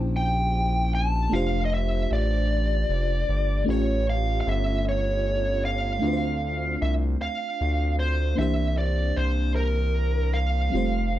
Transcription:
0.00 1.28 A#1 medium
0.00 1.27 A#3 medium
0.00 1.28 C#4 medium
0.00 1.28 E4 medium
0.00 1.29 G4 medium
0.00 1.30 C5 medium
0.17 0.94 G5 loud
0.95 1.34 A5 medium
1.29 2.07 F1 loud
1.29 3.62 A3 medium
1.29 3.63 D4 medium
1.29 3.63 F4 medium
1.29 1.62 F5 loud
1.34 3.64 G4 medium
1.34 3.65 C5 medium
1.65 1.72 D#5 medium
1.74 2.09 E5 medium
2.11 2.85 A1 medium
2.11 3.64 D5 medium
2.89 3.24 F1 medium
3.29 3.64 G1 medium
3.65 4.42 A1 medium
3.65 5.97 A3 medium
3.65 5.98 C#4 medium
3.65 5.99 F4 medium
3.70 6.00 G4 medium
3.70 4.05 C#5 medium
3.70 6.00 C#5 medium
4.10 4.39 F5 medium
4.41 4.46 F5 medium
4.47 5.99 G1 loud
4.47 4.84 E5 medium
4.89 5.65 C#5 medium
5.65 6.82 F5 medium
5.99 6.77 D2 medium
5.99 8.32 A3 medium
5.99 8.34 C4 medium
5.99 8.33 D4 medium
6.04 8.34 F4 soft
6.04 6.11 B4 soft
6.13 8.39 C5 medium
6.82 7.17 C2 medium
6.82 6.92 E5 medium
7.22 7.95 F5 medium
7.61 8.34 D2 medium
7.99 8.35 C5 medium
8.35 9.12 C2 medium
8.35 10.69 E3 medium
8.35 10.68 A#3 medium
8.35 10.68 D4 medium
8.35 8.75 E5 medium
8.40 10.70 G4 soft
8.40 10.71 C5 medium
8.78 9.18 D5 medium
9.17 10.69 C2 medium
9.17 9.55 C5 medium
9.56 10.36 A#4 medium
10.34 11.19 F5 medium
10.70 10.78 G3 soft
10.70 11.19 C4 medium
10.70 11.19 F4 medium
10.74 11.19 F1 medium
10.74 11.19 A3 medium
10.74 11.19 G4 medium
10.74 11.19 C5 medium

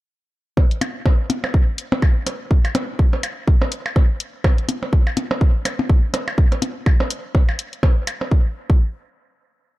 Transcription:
0.57 kick loud
0.57 percussion blips soft
0.71 closed hi-hat soft
0.81 closed hi-hat medium
0.81 percussion blips medium
1.06 kick loud
1.06 percussion blips medium
1.30 closed hi-hat medium
1.30 percussion blips medium
1.44 percussion blips soft
1.44 percussion blips medium
1.54 kick loud
1.78 closed hi-hat medium
1.92 percussion blips medium
2.02 kick loud
2.02 percussion blips medium
2.27 closed hi-hat medium
2.27 percussion blips soft
2.51 kick loud
2.65 closed hi-hat soft
2.65 percussion blips medium
2.75 closed hi-hat medium
2.75 percussion blips medium
2.99 kick loud
3.13 percussion blips soft
3.23 closed hi-hat medium
3.23 percussion blips medium
3.48 kick loud
3.62 percussion blips medium
3.72 closed hi-hat medium
3.86 percussion blips medium
3.96 kick loud
3.96 percussion blips soft
4.20 closed hi-hat medium
4.44 kick loud
4.44 percussion blips medium
4.58 closed hi-hat soft
4.69 closed hi-hat medium
4.69 percussion blips medium
4.83 percussion blips soft
4.93 kick loud
5.07 percussion blips medium
5.17 closed hi-hat medium
5.17 percussion blips medium
5.31 percussion blips medium
5.41 kick loud
5.65 closed hi-hat medium
5.65 percussion blips soft
5.65 percussion blips medium
5.79 percussion blips medium
5.89 kick loud
6.14 closed hi-hat medium
6.14 percussion blips medium
6.28 percussion blips medium
6.38 kick loud
6.52 closed hi-hat soft
6.52 percussion blips soft
6.62 closed hi-hat medium
6.62 percussion blips medium
6.86 kick loud
6.86 percussion blips medium
7.00 percussion blips medium
7.10 closed hi-hat medium
7.35 kick loud
7.35 percussion blips soft
7.49 percussion blips medium
7.59 closed hi-hat loud
7.73 closed hi-hat soft
7.83 kick loud
7.83 percussion blips medium
8.07 closed hi-hat loud
8.07 percussion blips medium
8.21 percussion blips soft
8.31 kick loud
8.70 kick loud

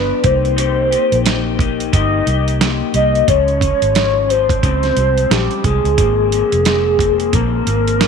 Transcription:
0.00 0.11 G1 medium
0.00 0.24 G2 medium
0.00 0.24 F3 soft
0.00 0.25 B3 soft
0.00 0.24 D4 medium
0.00 0.26 B4 medium
0.23 0.94 C2 medium
0.23 0.56 A#3 soft
0.23 0.56 D#4 soft
0.23 0.57 G4 soft
0.23 1.60 C5 loud
0.23 kick medium
0.23 closed hi-hat medium
0.45 closed hi-hat soft
0.56 0.91 C3 medium
0.56 0.91 A#3 medium
0.56 0.91 D#4 medium
0.56 0.90 G4 medium
0.56 closed hi-hat medium
0.91 1.24 A#3 soft
0.91 1.25 D#4 soft
0.91 1.25 G4 soft
0.91 closed hi-hat medium
1.12 1.89 A#1 medium
1.12 closed hi-hat soft
1.24 1.59 C3 medium
1.24 1.59 A#3 medium
1.24 1.58 D#4 medium
1.24 1.57 G4 medium
1.24 snare loud
1.24 closed hi-hat medium
1.58 1.92 A#3 soft
1.58 1.92 D#4 soft
1.58 1.93 G4 medium
1.58 kick medium
1.58 closed hi-hat medium
1.80 closed hi-hat soft
1.93 2.20 G1 medium
1.93 2.27 C3 medium
1.93 2.27 A#3 medium
1.93 2.26 D#4 medium
1.93 2.25 G4 medium
1.93 2.57 D#5 loud
1.93 kick medium
1.93 closed hi-hat medium
2.26 2.81 C2 medium
2.26 2.60 A#3 soft
2.26 2.61 D#4 soft
2.26 2.60 G4 soft
2.26 closed hi-hat medium
2.48 closed hi-hat soft
2.60 2.94 C3 medium
2.60 2.95 A#3 medium
2.60 2.95 D#4 medium
2.60 2.93 G4 medium
2.60 snare medium
2.60 closed hi-hat medium
2.94 3.21 C2 medium
2.94 3.29 A#3 soft
2.94 3.29 D#4 soft
2.94 3.28 G4 soft
2.94 3.26 D#5 loud
2.94 closed hi-hat medium
3.15 closed hi-hat soft
3.28 3.71 C#2 medium
3.28 3.62 C#3 medium
3.28 3.62 F3 medium
3.28 3.62 G#3 medium
3.28 4.32 C#5 loud
3.28 kick loud
3.28 closed hi-hat medium
3.48 closed hi-hat soft
3.61 3.95 F3 soft
3.61 3.96 G#3 soft
3.61 kick medium
3.61 closed hi-hat medium
3.82 4.59 G#1 medium
3.82 closed hi-hat soft
3.95 4.29 C#3 medium
3.95 4.30 F3 medium
3.95 4.29 G#3 medium
3.95 snare medium
3.95 closed hi-hat medium
4.29 4.63 F3 soft
4.29 4.63 G#3 soft
4.29 4.63 C4 soft
4.29 5.33 C5 loud
4.29 closed hi-hat medium
4.49 kick medium
4.49 closed hi-hat soft
4.63 4.90 C#2 medium
4.63 4.97 C#3 medium
4.63 4.97 F3 medium
4.63 4.97 G#3 medium
4.63 4.96 C4 medium
4.63 kick medium
4.63 closed hi-hat medium
4.83 snare soft
4.83 closed hi-hat soft
4.97 5.24 C2 medium
4.97 5.30 F3 soft
4.97 5.31 G#3 soft
4.97 5.31 C4 soft
4.97 closed hi-hat medium
5.18 closed hi-hat soft
5.30 5.47 A#1 medium
5.30 5.64 C#3 medium
5.30 5.65 F3 medium
5.30 5.64 G#3 medium
5.30 5.63 C4 medium
5.30 5.66 G4 medium
5.30 snare medium
5.30 closed hi-hat medium
5.51 closed hi-hat soft
5.64 5.81 C2 medium
5.64 5.97 F3 soft
5.64 5.98 G#3 soft
5.64 5.98 C4 soft
5.64 7.36 G#4 loud
5.64 kick medium
5.64 closed hi-hat medium
5.84 5.95 C#2 medium
5.84 closed hi-hat soft
5.98 6.42 G#1 medium
5.98 6.32 G#2 medium
5.98 6.32 F3 medium
5.98 6.32 A#3 medium
5.98 6.31 C4 medium
5.98 kick loud
5.98 closed hi-hat medium
6.32 6.65 F3 soft
6.32 6.66 A#3 soft
6.32 6.66 C4 soft
6.32 closed hi-hat medium
6.52 7.30 F1 medium
6.52 closed hi-hat soft
6.65 7.00 G#2 medium
6.65 7.00 F3 medium
6.65 6.99 A#3 medium
6.65 6.97 C4 medium
6.65 snare medium
6.65 closed hi-hat medium
6.99 7.32 F3 soft
6.99 7.33 A#3 soft
6.99 7.33 C4 medium
6.99 kick medium
6.99 closed hi-hat medium
7.20 closed hi-hat soft
7.33 7.61 A#1 medium
7.33 7.67 G#2 medium
7.33 7.67 F3 medium
7.33 7.66 A#3 medium
7.33 7.64 C4 medium
7.33 8.08 A#4 loud
7.33 kick medium
7.33 closed hi-hat medium
7.66 8.08 G#1 medium
7.66 7.99 F3 soft
7.66 7.99 A#3 soft
7.66 8.00 C4 soft
7.66 closed hi-hat medium
7.88 closed hi-hat soft
7.99 8.08 G#2 soft
7.99 8.08 F3 medium
7.99 8.08 A#3 medium
7.99 8.08 C4 medium
7.99 snare loud
7.99 closed hi-hat medium

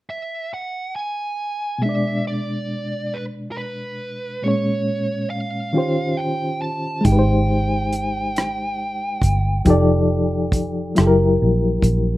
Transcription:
0.10 0.50 E5 medium
0.54 0.95 F#5 medium
0.96 1.85 G#5 medium
1.78 4.38 B2 medium
1.78 4.39 G#3 soft
1.83 4.41 D4 soft
1.83 2.23 E5 medium
1.89 4.43 D5 medium
2.27 3.16 D5 medium
3.14 3.24 B4 medium
3.52 3.57 A#4 soft
3.57 4.47 B4 medium
4.42 5.74 A#2 soft
4.42 5.74 G#3 soft
4.42 5.73 C#4 soft
4.42 5.30 C#5 medium
4.48 5.76 C#5 medium
5.30 6.20 F5 medium
5.73 7.04 D#3 soft
5.73 7.05 C#4 soft
5.73 7.05 F4 soft
5.73 7.06 G4 soft
5.78 7.07 C5 medium
6.17 6.61 G5 medium
6.62 7.05 A5 medium
7.01 9.60 G#3 medium
7.01 9.62 D#4 soft
7.01 closed hi-hat medium
7.05 9.19 G#1 medium
7.05 9.63 G4 soft
7.05 11.36 G5 medium
7.05 kick medium
7.12 7.15 B4 soft
7.19 9.69 C5 medium
7.93 closed hi-hat medium
8.36 cross-stick medium
8.36 closed hi-hat medium
9.22 9.62 G1 medium
9.22 kick medium
9.22 closed hi-hat medium
9.65 10.92 F1 medium
9.65 10.96 F3 medium
9.65 10.96 D#4 medium
9.65 10.97 G4 medium
9.65 10.98 A4 medium
9.65 kick medium
9.65 closed hi-hat medium
9.70 10.98 D5 medium
10.52 kick medium
10.52 closed hi-hat medium
10.95 11.37 F#1 medium
10.95 12.17 F#3 medium
10.95 12.17 E4 medium
10.95 12.17 G4 medium
10.95 cross-stick medium
10.95 closed hi-hat medium
11.01 11.05 A4 medium
11.07 12.17 A#4 medium
11.42 11.80 A#1 medium
11.82 12.17 A#1 medium
11.82 kick medium
11.82 closed hi-hat medium

